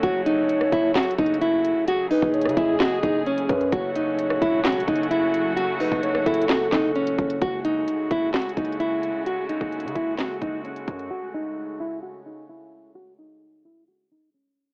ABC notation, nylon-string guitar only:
X:1
M:4/4
L:1/8
Q:1/4=130
K:F#dor
V:1 name="Nylon-string guitar"
F D2 E F D E2 | F D2 E F D C2 | F D2 E F D E2 | F D2 E F D C2 |
F D2 E F D E2 | F D2 E F D C2 | F D2 E F D E2 | F D2 E F D C2 |]